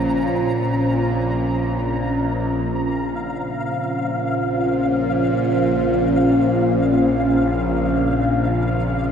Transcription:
Already playing: synth drone A#1 A#2, ambient pad C#4 F4 C5, synth texture A#5
2.70 synth drone A#1 A#2, synth texture F5

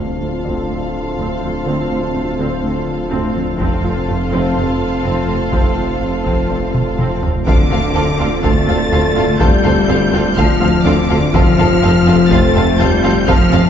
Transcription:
Already playing: detuned saw bass D1, analog synth pad A3 D4 F4 C5, synth arpeggio sound C4, french horn section C4 F4, viola section F4, violin section A4 F5
0.20 cello section D2, double bass section D2, tuba D2, viola section A3, synth arpeggio sound C4
0.45 cello section D2, tuba D2, double bass section D2, synth arpeggio sound D3, viola section C4, felt piano D5, taiko
0.69 cello section D2, double bass section D2, tuba D2, synth arpeggio sound A3, viola section C4
1.18 cello section D2, tuba D2, double bass section D2, synth arpeggio sound D3, viola section C4
1.42 tuba D2, cello section D2, double bass section D2, synth arpeggio sound F3, viola section C4
1.66 tuba D2, double bass section D2, cello section D2, synth arpeggio sound D3, felt piano A3 A4, viola section C4
1.90 tuba D2, double bass section D2, cello section D2, synth arpeggio sound C4, viola section C4
2.14 cello section D2, tuba D2, double bass section D2, viola section A3, synth arpeggio sound C4
2.38 double bass section D2, tuba D2, cello section D2, synth arpeggio sound D3, viola section C4
2.63 double bass section D2, cello section D2, tuba D2, synth arpeggio sound A3, viola section C4
3.11 double bass section D2, cello section D2, tuba D2, synth arpeggio sound D3, viola section C4
3.35 tuba D2, double bass section D2, cello section D2, synth arpeggio sound F3, viola section C4
3.59 double bass section F1, detuned saw bass F1, tuba F1, cello section F2, synth arpeggio sound F3, analog synth pad A3 C4 F4 C5, viola section C4 F4, french horn section C4 A4, violin section A4 F5, taiko
3.83 double bass section F1, tuba F1, cello section F2, viola section C4, synth arpeggio sound F4
4.08 double bass section F1, tuba F1, cello section F2, viola section A3, synth arpeggio sound F4
4.32 double bass section F1, tuba F1, cello section F2, synth arpeggio sound F3, viola section C4
4.56 tuba F1, double bass section F1, cello section F2, viola section C4, synth arpeggio sound C4
5.04 double bass section F1, tuba F1, cello section F2, synth arpeggio sound F3, viola section C4
5.28 double bass section F1, tuba F1, cello section F2, synth arpeggio sound A3, viola section C4
5.52 double bass section F1, tuba F1, cello section F2, synth arpeggio sound F3, viola section C4, taiko
5.77 double bass section F1, tuba F1, cello section F2, viola section C4, synth arpeggio sound F4
6.01 double bass section F1, tuba F1, cello section F2, viola section A3, synth arpeggio sound F4
6.25 tuba F1, double bass section F1, cello section F2, synth arpeggio sound F3, viola section C4, taiko
6.49 tuba F1, double bass section F1, cello section F2, synth arpeggio sound C4, viola section C4, felt piano D5
6.74 taiko mid
6.98 double bass section F1, tuba F1, cello section F2, synth arpeggio sound F3, viola section C4, taiko mid
7.22 tuba F1, double bass section F1, cello section F2, synth arpeggio sound A3, viola section C4, taiko low
7.46 detuned saw bass D1, tuba D2, double bass section D2, synth arpeggio sound D3, cello section D3, french horn section D3, analog synth pad A3 C4 F4 D5, viola section C4 F4, violin section A4 F5 D6, felt piano E5, taiko
7.71 tuba D2, double bass section D2, synth arpeggio sound A3, viola section C4 F4, violin section A4 F5, taiko low
7.94 double bass section D2, tuba D2, synth arpeggio sound C4, viola section C4 F4, violin section A4 F5
8.19 double bass section D2, tuba D2, viola section C4 F4, violin section A4 F5
8.42 tuba D2, double bass section D2, synth arpeggio sound D3, cello section A3, french horn section A3, viola section C4 F4, violin section A4 F5 A6, taiko
8.67 tuba D2, double bass section D2, synth arpeggio sound A3, viola section C4 F4, violin section A4 F5, taiko low
8.92 double bass section D2, tuba D2, synth arpeggio sound C4, viola section C4 F4, violin section A4 F5, taiko low
9.16 double bass section D2, tuba D2, viola section C4 F4, violin section A4 F5
9.39 double bass section D2, tuba D2, synth arpeggio sound D3, french horn section G3, cello section G3, viola section C4 F4, violin section A4 F5 G6, taiko
9.64 double bass section D2, tuba D2, synth arpeggio sound A3, viola section C4 F4, violin section A4 F5, taiko low
9.88 tuba D2, double bass section D2, viola section C4 F4, synth arpeggio sound C4, violin section A4 F5, felt piano D5
10.12 double bass section D2, tuba D2, viola section C4 F4, felt piano A4, violin section A4 F5
10.36 double bass section D2, tuba D2, synth arpeggio sound D3, french horn section F3, cello section F3, viola section C4 F4, violin section A4 F5 F6, taiko
10.60 tuba D2, double bass section D2, synth arpeggio sound A3, viola section C4 F4, violin section A4 F5, taiko low
10.85 double bass section D2, tuba D2, cello section D3, french horn section D3, synth arpeggio sound C4, viola section C4 F4, violin section A4 F5 D6, taiko low
11.09 double bass section D2, tuba D2, viola section C4 F4, violin section A4 F5
11.33 detuned saw bass F1, tuba F1, double bass section F2, synth arpeggio sound F3, french horn section F3, cello section F3, analog synth pad A3 C4 F4 C5, viola section C4 F4, violin section A4 F5 F6, taiko
11.58 tuba F1, double bass section F2, synth arpeggio sound C4, viola section C4 F4, violin section A4 F5, taiko low
11.82 tuba F1, double bass section F2, viola section C4 F4, synth arpeggio sound F4, violin section A4 F5
12.06 tuba F1, double bass section F2, viola section C4 F4, violin section A4 F5
12.30 tuba F1, double bass section F2, synth arpeggio sound F3, cello section A3, french horn section A3, felt piano C4 C5, viola section C4 F4, violin section A4 F5 A6, taiko
12.54 tuba F1, double bass section F2, synth arpeggio sound C4, viola section C4 F4, violin section A4 F5, taiko low
12.79 tuba F1, double bass section F2, cello section G3, french horn section G3, viola section C4 F4, synth arpeggio sound F4, violin section A4 F5 G6, taiko low
13.03 tuba F1, double bass section F2, viola section C4 F4, violin section A4 F5
13.27 tuba F1, double bass section F2, synth arpeggio sound F3, cello section F3, french horn section F3, viola section C4 F4, violin section A4 F5 F6, taiko
13.52 tuba F1, double bass section F2, viola section C4 F4, synth arpeggio sound C4, violin section A4 F5, taiko low

